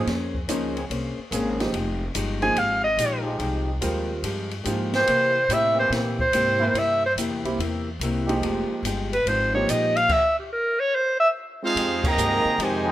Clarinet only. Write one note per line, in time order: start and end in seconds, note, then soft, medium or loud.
2.42 2.60 G#5 medium
2.59 2.83 F5 medium
2.84 3.23 D#5 medium
4.96 5.55 C5 loud
5.53 5.79 E5 loud
5.79 5.91 C5 medium
6.21 6.80 C5 medium
6.79 7.04 E5 loud
7.06 7.14 C5 medium
9.13 9.29 B4 medium
9.28 9.54 C5 medium
9.54 9.72 C#5 medium
9.70 9.98 D#5 medium
9.96 10.14 F5 loud
10.12 10.38 E5 loud
10.39 10.54 G4 soft
10.53 10.81 A#4 medium
10.80 10.96 C#5 loud
10.95 11.19 C5 medium
11.20 11.29 E5 loud